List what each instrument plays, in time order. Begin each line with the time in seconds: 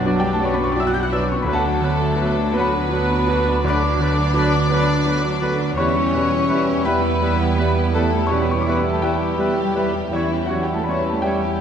Already playing: double bass section B1, grand piano B1 F#2 F#3 D4 F#4 G4 B4 D5 F#5 G5, french horn section F#3, cello section F#3, trombone section F#3 B3, viola section F#3 B3, trumpet section D4, violin section D4 F#4, flute F#5
0.05 bassoon F#3, grand piano F#3 D4 B4, oboe D5
0.20 cello section G3, french horn section G3, grand piano G4 G5, violin section G4, flute G5
0.33 french horn section A3, cello section A3, violin section A4, grand piano A5, flute A5
0.41 bassoon F#3, grand piano F#3 D4 B4, french horn section C#4, oboe D5
0.45 cello section C#4, violin section C#5, flute C#6, grand piano C#6
0.53 french horn section B3, violin section B4, grand piano B5, flute B5
0.57 cello section B3
0.63 french horn section C#4, cello section C#4, grand piano C#6, flute C#6
0.67 french horn section D4, violin section C#5
0.72 bassoon F#3, cello section D4, violin section D5, oboe D5, grand piano D6, flute D6
0.76 grand piano F#3 E6, french horn section E4, flute E6
0.81 cello section E4, violin section E5
0.85 french horn section F#4, cello section F#4, violin section F#5, grand piano F#6, flute F#6
0.93 french horn section G4, cello section G4, violin section G5, flute G6, grand piano G6
0.97 french horn section F#4, violin section F#5, flute F#6
1.02 french horn section E4, cello section F#4, grand piano F#6
1.09 bassoon F#3, grand piano F#3 D4, cello section E4, oboe D5, violin section E5, flute E6
1.13 french horn section D4, grand piano B4 E6
1.17 cello section D4, violin section D5, flute D6, grand piano D6
1.24 french horn section C#4
1.29 cello section C#4, violin section C#5, flute C#6, grand piano C#6
1.34 french horn section B3, cello section B3
1.38 violin section B4, flute B5, grand piano B5
1.43 grand piano D2, bassoon F#3, french horn section A3, trombone section B3, trumpet section D4
1.48 double bass section D2, viola section D3 B3, trombone section F#3, cello section A3, violin section F#4 A4, oboe B4, flute A5
1.53 grand piano A4 F#5 A5
1.65 viola section F#3 D4, violin section D4
1.81 grand piano D3, viola section D3 B3, bassoon F#3, violin section F#4, oboe B4
2.02 viola section F#3 D4, violin section D4
2.16 grand piano F#3 F#4 B4, viola section B3
2.20 viola section D3, bassoon F#3, violin section F#4, oboe B4
2.38 viola section F#3 D4, violin section D4
2.52 viola section D3, grand piano F#3 F#4 B4, french horn section B3
2.56 bassoon F#3, viola section B3, cello section B3, violin section F#4 B4, oboe B4, grand piano F#5 B5, flute B5
2.61 grand piano B4
2.75 viola section F#3 D4, violin section D4
2.89 viola section D3, grand piano F#3, bassoon F#3
2.93 viola section B3, violin section F#4, oboe B4
3.12 viola section F#3 D4, violin section D4
3.27 grand piano F#3 F#4 B4, bassoon F#3, violin section F#4, oboe B4
3.32 viola section D3 B3
3.47 viola section F#3 D4, violin section D4
3.63 grand piano D2, viola section D3 B3, bassoon F#3, french horn section D4, cello section D4, violin section F#4 D5, oboe B4, flute D6
3.68 grand piano D5 B5 D6
3.82 viola section F#3 D4, violin section D4
3.98 grand piano D3, viola section D3 B3, bassoon F#3, violin section F#4, oboe B4
4.18 viola section F#3 D4, violin section D4
4.33 viola section D3 B3, grand piano F#3 F#4 B4, bassoon F#3, violin section F#4
4.38 oboe B4
4.53 viola section F#3 D4, violin section D4
4.69 viola section D3 B3, grand piano F#3 F#4 B4, bassoon F#3, violin section F#4, oboe B4
4.88 viola section F#3 D4, violin section D4
5.06 viola section D3 B3, grand piano F#3, bassoon F#3, violin section F#4, oboe B4
5.24 viola section F#3 D4, violin section D4
5.41 viola section D3 B3, grand piano F#3 F#4 B4, bassoon F#3, violin section F#4, oboe B4
5.59 violin section D4, viola section D4
5.63 viola section F#3
5.76 grand piano E2 C#5 C#6, double bass section E2, trombone section G3 B3, bassoon G3, viola section B3, french horn section C#4, cello section C#4, trumpet section E4, violin section E4 C#5, oboe B4
5.80 viola section E3, flute C#6
5.95 viola section G3 E4, violin section G4
6.14 grand piano B2, viola section E3 B3, bassoon G3, violin section E4, oboe B4
6.31 viola section G3 E4, violin section G4
6.49 viola section E3 B3, grand piano G3 E4 B4, violin section E4, oboe B4
6.53 bassoon G3
6.68 viola section G3 E4, violin section G4
6.85 viola section E3 B3, grand piano G3 E4 B4 G5 B5, bassoon G3, french horn section B3, cello section B3, violin section E4 B4, oboe B4, flute B5
7.02 viola section G3 E4, violin section G4
7.19 viola section E3 B3, grand piano G3, bassoon G3, violin section E4, oboe B4
7.37 viola section G3 E4, violin section G4
7.56 viola section E3 B3, grand piano G3 B4, violin section E4, oboe B4
7.60 bassoon G3, grand piano E4
7.75 viola section G3 E4, violin section G4
7.93 grand piano E2 A4 A5, viola section E3 B3, bassoon G3, french horn section A3, cello section A3, violin section E4 A4, oboe B4, flute A5
8.11 viola section G3 E4, violin section G4
8.27 viola section E3 B3, bassoon G3, french horn section C#4, cello section C#4, grand piano C#5 C#6, violin section C#5, flute C#6
8.31 grand piano B2, violin section E4, oboe B4
8.41 french horn section B3, cello section B3, grand piano B5, flute B5
8.46 viola section G3 E4, violin section G4 B4
8.51 french horn section C#4, cello section C#4, grand piano C#6, flute C#6
8.58 french horn section D4, violin section C#5, grand piano D6
8.63 viola section E3 B3, cello section D4, grand piano E4, violin section D5, flute D6
8.68 grand piano G3 B4 C#6, bassoon G3, violin section E4, oboe B4
8.72 french horn section C#4, cello section C#4, flute C#6
8.76 french horn section B3, violin section C#5, grand piano B5, flute B5
8.82 viola section G3 E4, cello section B3, violin section B4
8.88 french horn section A3, cello section A3, violin section G4, flute A5, grand piano A5
8.94 violin section A4
9.01 viola section E3 B3, french horn section G3, grand piano G3 E4 G4 B4 E5 G5, cello section G3, bassoon G3, violin section G4, oboe B4, flute G5
9.06 violin section E4
9.20 viola section G3 E4, violin section G4
9.38 viola section E3 B3, bassoon G3, grand piano G3, violin section E4, oboe B4
9.56 viola section G3 E4, violin section G4
9.75 viola section E3 B3, bassoon G3, grand piano G3 E4 B4, violin section E4, oboe B4
9.93 viola section G3 E4, violin section G4
10.11 grand piano E2 E4 C#5 E5, double bass section E2, french horn section E3, viola section E3 C#4, cello section E3, bassoon G3, trombone section G3 C#4, trumpet section E4, violin section E4, oboe C#5, flute E5
10.29 viola section G3 E4, violin section G4
10.45 viola section E3 C#4, french horn section F#3, cello section F#3, violin section F#4, grand piano F#4 F#5, flute F#5
10.50 grand piano E3, bassoon G3, violin section E4, oboe C#5
10.60 french horn section G3, cello section G3, violin section G4, flute G5, grand piano G5
10.66 viola section G3 E4, violin section G4
10.72 french horn section A3, cello section A3, flute A5, grand piano A5
10.77 violin section A4
10.83 viola section E3 C#4, bassoon G3, cello section B3, french horn section B3, violin section B4, grand piano B5, flute B5
10.87 grand piano G3 C#4 C#5 C#6, french horn section C#4, violin section E4, oboe C#5, flute C#6
10.91 cello section C#4, violin section C#5
10.99 cello section B3, french horn section B3, grand piano B5, flute B5
11.04 viola section G3 E4, violin section G4 B4
11.09 cello section A3, grand piano A5
11.13 french horn section A3, violin section A4, flute A5
11.22 viola section E3 C#4, french horn section G3, bassoon G3, cello section G3, violin section E4, grand piano G4 E5 G5, oboe C#5, flute G5
11.26 grand piano G3 C#4 C#5, violin section G4
11.43 viola section G3 E4, violin section G4